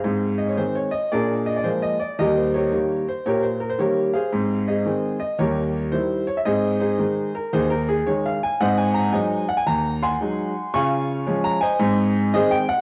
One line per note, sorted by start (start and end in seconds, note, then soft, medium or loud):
0.00 0.36 G#4 medium
0.00 0.36 C5 soft
0.00 0.39 F5 medium
0.04 0.50 G#2 medium
0.04 0.35 C4 soft
0.38 0.48 D#5 medium
0.48 0.58 C#5 medium
0.57 0.87 D#3 soft
0.57 0.87 G#3 soft
0.57 0.88 C4 soft
0.57 0.75 C5 medium
0.75 0.93 C#5 medium
0.91 1.11 D#5 medium
1.12 1.57 A#2 medium
1.12 1.43 D4 soft
1.12 1.45 G#4 medium
1.12 1.45 A#4 medium
1.12 1.47 D5 medium
1.46 1.56 D#5 medium
1.56 1.65 D5 medium
1.64 1.93 F3 soft
1.64 1.94 G#3 soft
1.64 1.94 A#3 medium
1.64 1.82 C5 medium
1.82 2.00 D#5 medium
2.00 2.18 D5 medium
2.19 2.64 D#2 medium
2.19 2.50 G3 medium
2.19 2.35 G4 medium
2.19 2.36 A#4 medium
2.19 2.36 D#5 medium
2.37 2.54 C5 medium
2.54 3.05 G4 medium
2.54 3.05 A#4 soft
2.54 3.08 C#5 medium
2.72 3.01 D#3 soft
2.72 3.01 G3 soft
2.72 3.02 A#3 soft
3.08 3.26 C5 medium
3.26 3.71 A#2 medium
3.26 3.42 G4 medium
3.26 3.43 A#4 medium
3.26 3.43 C#5 medium
3.43 3.60 C5 medium
3.60 3.69 A#4 medium
3.69 3.79 C5 medium
3.78 4.08 D#3 soft
3.78 4.08 G3 soft
3.78 4.09 A#3 soft
3.78 4.12 G4 medium
3.78 4.12 A#4 medium
3.78 4.14 C#5 medium
4.13 4.64 G#4 medium
4.13 4.64 C5 medium
4.13 4.67 F5 medium
4.32 4.78 G#2 medium
4.32 4.63 C4 medium
4.68 5.18 G#4 soft
4.68 5.18 C5 soft
4.68 5.18 D#5 medium
4.86 5.15 D#3 soft
4.86 5.15 G#3 soft
4.86 5.16 C4 medium
5.19 5.39 D#5 medium
5.39 5.84 D#2 medium
5.39 5.70 G3 medium
5.39 5.89 G4 medium
5.39 5.89 A#4 medium
5.39 5.92 C#5 medium
5.92 6.22 D#3 soft
5.92 6.22 G3 soft
5.92 6.23 E4 soft
5.92 6.27 C5 medium
6.27 6.37 C#5 medium
6.37 6.46 E5 medium
6.45 6.91 G#2 medium
6.45 6.77 C4 medium
6.45 6.79 G#4 medium
6.45 6.79 C5 medium
6.45 6.81 D#5 medium
6.80 6.98 D#4 medium
6.80 7.32 G#4 medium
6.80 7.35 C5 medium
6.98 7.28 D#3 soft
6.98 7.29 G#3 soft
6.98 7.29 D#4 soft
7.35 7.53 A#4 medium
7.53 7.98 D#2 medium
7.53 7.70 D#4 medium
7.53 7.69 G#4 medium
7.53 7.70 C5 medium
7.70 7.88 A#4 medium
7.88 8.07 G#4 medium
8.07 8.36 D#3 soft
8.07 8.37 G#3 medium
8.07 8.37 D#4 soft
8.07 8.24 C#5 medium
8.26 8.42 F5 medium
8.43 8.61 G#5 medium
8.60 9.06 G#2 medium
8.60 8.91 C4 medium
8.60 8.77 C5 medium
8.60 8.77 D#5 medium
8.60 8.78 F#5 loud
8.78 8.95 G#5 medium
8.94 9.13 A#5 medium
9.12 9.42 F#3 medium
9.12 9.43 G#3 medium
9.12 9.43 D#4 medium
9.12 9.46 C5 medium
9.12 9.46 D#5 medium
9.12 9.48 G#5 medium
9.49 9.58 F#5 loud
9.57 9.67 G#5 medium
9.67 10.12 D#2 medium
9.67 10.02 A#5 loud
10.02 10.71 F#5 medium
10.02 10.71 G#5 medium
10.02 10.74 C6 medium
10.21 10.50 F#3 soft
10.21 10.50 G#3 medium
10.21 10.51 D#4 medium
10.74 11.20 C#3 medium
10.74 11.05 F4 medium
10.74 11.41 F5 medium
10.74 11.41 G#5 medium
10.74 11.45 C#6 loud
11.27 11.56 F3 medium
11.27 11.57 G#3 medium
11.27 11.56 C#4 medium
11.44 11.62 A#5 loud
11.61 12.30 C5 medium
11.61 12.30 D#5 medium
11.61 12.34 G#5 loud
11.79 12.26 G#2 loud
11.79 12.11 C4 medium
12.34 12.63 D#3 soft
12.34 12.64 G#3 medium
12.34 12.64 C4 medium
12.34 12.51 G#4 medium
12.34 12.51 C5 medium
12.34 12.51 D#5 loud
12.51 12.69 G5 loud
12.69 12.81 F#5 loud